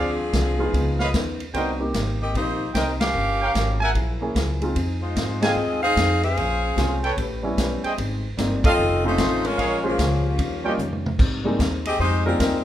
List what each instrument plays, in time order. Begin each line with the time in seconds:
Already playing: upright bass D2, hollow-body jazz guitar D3 G#3 C4 F4, saxophone section F3 C4 D4 G#4, trumpet section G#4 C5 D5 F5
0.33 upright bass C2, hollow-body jazz guitar D3 G#3 C4 F4, kick, snare, hi-hat pedal, ride
0.58 grand piano G#3 B3 D#4 F4
0.73 upright bass C#2, hollow-body jazz guitar C#3 F3 B3 D#4, kick, ride
0.99 trumpet section B4 C#5 D#5 F5, snare
1.13 upright bass D#2, hollow-body jazz guitar C#3 F3 B3 D#4, kick, snare, hi-hat pedal, ride
1.40 ride
1.53 upright bass C2, hollow-body jazz guitar C3 G3 A#3 D#4, grand piano A3 B3 D4 F#4, trumpet section A#4 C5 D#5 G5, kick, ride
1.79 grand piano A#3 C4 D#4 G4
1.94 upright bass G#1, hollow-body jazz guitar C3 G3 A#3 D#4, kick, snare, hi-hat pedal, ride
2.22 saxophone section C4 G4 A#4 D#5
2.34 upright bass A#1, hollow-body jazz guitar C3 G3 A#3 D#4, saxophone section A#3 D#4 G4 C5, kick, ride
2.74 upright bass C2, hollow-body jazz guitar C3 G3 A#3 D#4, trumpet section A#4 C5 D#5 G5, kick, snare, hi-hat pedal, ride
3.01 saxophone section C#4 G4 A#4 F5, snare, ride
3.14 upright bass G1, hollow-body jazz guitar G2 F3 A#3 C#4
3.41 trumpet section A#4 C#5 F5 G5
3.54 upright bass G#1, hollow-body jazz guitar G2 F3 A#3 C#4, kick, snare, hi-hat pedal, ride
3.80 trumpet section A#4 E5 F#5 G#5
3.94 upright bass A#1, hollow-body jazz guitar F#3 A#3 E4 G#4, kick, ride
4.21 grand piano A#3 C#4 E4 G#4
4.35 upright bass C#2, hollow-body jazz guitar F#3 A#3 E4 G#4, kick, snare, hi-hat pedal, ride
4.62 grand piano G#3 C4 D#4 F4, ride
4.75 upright bass F2, hollow-body jazz guitar F3 C4 D#4 G#4, kick, ride
5.02 saxophone section G#3 D#4 F4 C5
5.16 upright bass G#2, hollow-body jazz guitar F3 C4 D#4 G#4, kick, snare, hi-hat pedal, ride
5.42 grand piano G#3 C4 D#4 G5, saxophone section C4 F4 G#4 D#5, trumpet section C5 D#5 F5 G#5, snare, ride
5.56 upright bass D#2, hollow-body jazz guitar F3 C4 D#4 G#4
5.83 saxophone section D#4 G#4 C5 F5
5.96 upright bass F2, hollow-body jazz guitar F3 C4 D#4 G#4, kick, snare, hi-hat pedal, ride
6.23 saxophone section C#4 G#4 C5 F5, ride
6.37 upright bass A#1, hollow-body jazz guitar A#3 C#4 G#4 C5, kick, ride
6.76 upright bass C2, grand piano G#3 C4 C#4 F4, hollow-body jazz guitar A#3 C#4 G#4 C5, kick, snare, hi-hat pedal, ride
7.03 trumpet section A4 B4 C#5 G5, ride
7.17 upright bass A1, hollow-body jazz guitar A3 C#4 G4 B4, kick, ride
7.43 grand piano G3 B3 C#4 E4
7.57 upright bass B1, hollow-body jazz guitar A3 C#4 G4 B4, kick, snare, hi-hat pedal, ride
7.83 trumpet section G#4 C5 D#5 G5, muted upright bass stroke, ride
7.97 upright bass G#1, hollow-body jazz guitar G#2 G3 C4 D#4, kick, ride
8.37 upright bass G1, hollow-body jazz guitar G#2 G3 C4 D#4, grand piano G3 A#3 C4 D#4, kick, snare, hi-hat pedal, ride
8.64 saxophone section C4 F4 A4 D#5, trumpet section A4 C#5 D#5 F5, kick, ride
8.77 upright bass F1, hollow-body jazz guitar F2 D#3 A3 C#4
9.04 grand piano A3 C4 C#4 D#4, saxophone section A3 D#4 F4 C5
9.18 upright bass A1, hollow-body jazz guitar F2 D#3 A3 C#4, kick, snare, hi-hat pedal, ride
9.45 saxophone section G#3 C#4 F4 A#4, ride
9.58 upright bass A#1, hollow-body jazz guitar A#2 F3 G#3 C#4, trumpet section G#4 A#4 C#5 F5, kick, ride
9.84 saxophone section F3 A#3 C#4 G#4, grand piano G#3 C#4 F4 C5
9.98 upright bass C#2, hollow-body jazz guitar A#2 F3 G#3 C#4, kick, snare, hi-hat pedal, ride
10.26 saxophone section F3 A#3 C#4 G4
10.38 upright bass D#2, hollow-body jazz guitar D#3 G3 C#4 F4, kick, ride
10.64 grand piano G3 A#3 C#4 F4, trumpet section G4 C#5 D#5 G5
10.78 upright bass F2, hollow-body jazz guitar D#3 G3 C#4 F4, hi-hat pedal, mid tom
10.93 mid tom
11.06 mid tom
11.18 hollow-body jazz guitar G#2 G3 C4 D#4, upright bass G#2, kick, crash
11.44 grand piano G3 G#3 A#3 C4 D#4
11.59 upright bass D#2, hollow-body jazz guitar G#2 G3 C4 D#4, kick, snare, hi-hat pedal, ride
11.85 saxophone section C4 G4 G#4 D#5, ride
11.99 upright bass F2, hollow-body jazz guitar G#2 G3 C4 D#4, saxophone section G#3 D#4 G4 C5, kick
12.25 grand piano G3 G#3 A#3 C4 F4, saxophone section G3 C4 D#4 A#4
12.40 upright bass D#2, hollow-body jazz guitar G#2 G3 C4 D#4, saxophone section G3 C4 D#4 A#4, kick, snare, hi-hat pedal, ride